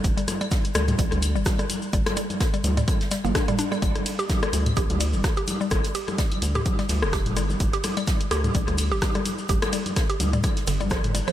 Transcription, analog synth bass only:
X:1
M:4/4
L:1/16
Q:"Swing 16ths" 1/4=127
K:Gm
V:1 name="Analog synth bass" clef=bass
G,,, z4 z D,, z B,,, D,,2 G,,, z4 | G,,, z4 z D,, z4 G,,, z4 | G,,, z4 z D,, z B,,, D,,2 G,,, z4 | G,,, z4 z D,, z3 D,, F,,,3 G,,, z |
G,,, z4 z D,, z B,,, D,,2 G,,, z4 | G,,, z4 z D,, z3 G,,,4- G,,, z |]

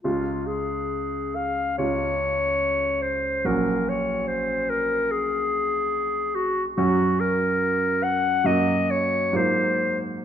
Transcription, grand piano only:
X:1
M:4/4
L:1/8
Q:1/4=72
K:Db
V:1 name="Grand piano"
[D,,A,DF]4 [D,,A,DF]4 | [B,,,G,DG]8 | [G,,G,DG]4 [G,,G,B,G]2 [A,,G,B,F]2 |]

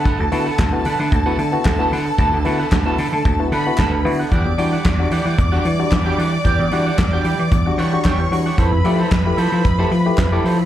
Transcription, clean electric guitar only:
X:1
M:4/4
L:1/16
Q:1/4=113
K:Edor
V:1 name="Clean electric guitar"
[ABf] z [ABa] [ABf] z2 [ABf] [ABf] z [ABf] z3 [ABa] [ABf] z | [ABa] z [ABf] [ABf] z [ABa] [ABa] z3 [ABf] z [ABa] z2 [ABf] | [Gdf] z [Gdg] [Gdf] z2 [Gdf] [Gdf] z [Gdf] z3 [Gdg] [Gdf] z | [Gdg] z [Gdf] [Gdf] z [Gdg] [Gdg] z3 [Gdf] z [Gdg] z2 [Gdf] |
[EA=c] z [EAd] [EAc] z2 [EAc] [EAc] z [EAc] z3 [EAd] [EAc] z |]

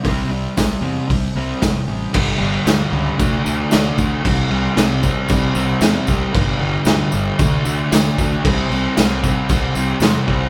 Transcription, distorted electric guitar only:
X:1
M:4/4
L:1/8
Q:1/4=114
K:Clyd
V:1 name="Distorted electric guitar" clef=bass
[C,G,C] [C,G,] [C,G,] [C,G,C] [C,G,] [C,G,C] [C,G,] [C,G,] | [G,,D,G,] [G,,D,G,] [G,,D,G,] [G,,D,G,] [D,A,D] [D,A,D] [D,A,D] [D,A,D] | [C,G,C] [C,G,C] [C,G,C] [C,G,C] [C,G,C] [C,G,C] [C,G,C] [C,G,C] | [G,,D,G,] [G,,D,G,] [G,,D,G,] [G,,D,G,] [D,A,D] [D,A,D] [D,A,D] [D,A,D] |
[C,G,C] [C,G,C] [C,G,C] [C,G,C] [C,G,C] [C,G,C] [C,G,C] [C,G,C] |]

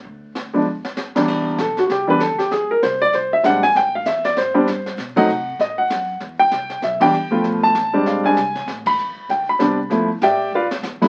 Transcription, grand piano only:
X:1
M:4/4
L:1/8
Q:"Swing" 1/4=195
K:G
V:1 name="Grand piano"
z8 | [K:C] z2 A ^F [FG] B A G | ^G _B ^B d B e ^f ^g | g f e d c4 |
z ^f3 ^d f3 | z g3 e g3 | z a3 f _a3 | z b3 g b3 |
z2 [Gdeg]2 [FBdf] z3 |]
V:2 name="Grand piano"
z3 [=F,_A,B,D] z3 [C,,E,G,B,D]- | [K:C] [C,,E,G,B,D]2 z3 [E,G,B,D] z2 | z6 [G,^G,^B,D] z | z4 z [G,B,CD] z2 |
z [^F,A,C^D] z6 | z4 z [E,G,B,D] z [F,A,B,F]- | [F,A,B,F]2 z [G,_A,CD]2 [G,A,CD] z2 | z6 [G,B,CD] z |
[F,A,B,E] z6 [G,,^F,A,B,E] |]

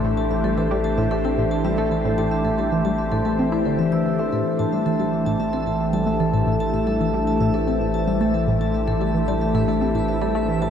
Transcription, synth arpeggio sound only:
X:1
M:4/4
L:1/16
Q:1/4=112
K:Am
V:1 name="Synth arpeggio sound" clef=bass
A,, z A,, G, E, G, z A,, A, C A,, z G, A, E, A,, | A,, z A,, G, E, G, z A,, A, C E D, E, E, E, A, | A,, z A,, G, E, G, z A,, A, C A,, z G, A, E, A,, | A,, z A,, G, E, G, z A,, A, C A,, z G, A, E, A,, |
A,, z A,, G, E, G, z A,, A, C A,, z G, A, E, A,, |]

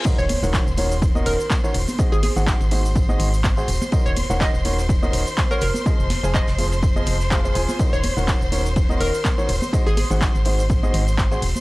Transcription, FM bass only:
X:1
M:4/4
L:1/16
Q:"Swing 16ths" 1/4=124
K:Ebdor
V:1 name="FM bass" clef=bass
z E,,, z E,,, z E,,,4- E,,, E,,, z3 E,,, z | z A,,, z A,,, z A,,,4- A,,, A,,,4 E,,, z | z E,,, z E,,, z E,,,4- E,,, E,,, z3 F,,, z | z F,,, z F,,, z F,,,4- F,,, F,,,4 E,,, z |
z E,,, z E,,, z E,,,4- E,,, E,,, z3 E,,, z | z A,,, z A,,, z A,,,4- A,,, A,,,4 E,,, z |]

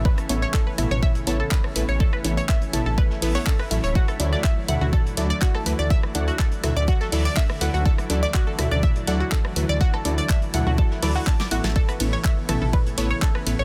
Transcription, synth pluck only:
X:1
M:4/4
L:1/16
Q:1/4=123
K:Dlyd
V:1 name="Synth pluck"
z2 [B,EAc]4 [B,EAe]4 [B,EAc] z3 [B,EAB] z | z2 [B,EAc]4 [B,EAe]4 [B,EAB] [B,EAf]3 [F,EAe]2- | [F,EAe]2 [F,EAd]4 [F,EAe]4 [F,EAd] z3 [F,EAB] z | z2 [F,EAd]4 [F,EAe]4 [F,EAd] z3 [F,EAB] z |
z2 [F,EAd]4 [F,EAe]4 [F,EAd] z3 [F,EAB] z | z2 [F,EAd]4 [F,EAe]4 [F,EAB] [F,EAf]3 [B,EAe]2- | [B,EAe]2 [B,EAc]4 [B,EAe]4 [B,EAc] z3 [B,EAB] z |]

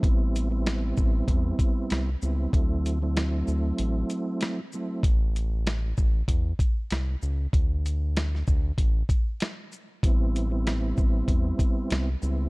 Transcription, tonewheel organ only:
X:1
M:4/4
L:1/16
Q:"Swing 16ths" 1/4=96
K:Ador
V:1 name="Tonewheel organ"
[G,B,CE]3 [G,B,CE]8- [G,B,CE]2 z [G,B,CE]2 | [F,A,CE]3 [F,A,CE]8- [F,A,CE]2 z [F,A,CE]2 | z16 | z16 |
[G,B,CE]3 [G,B,CE]8- [G,B,CE]2 z [G,B,CE]2 |]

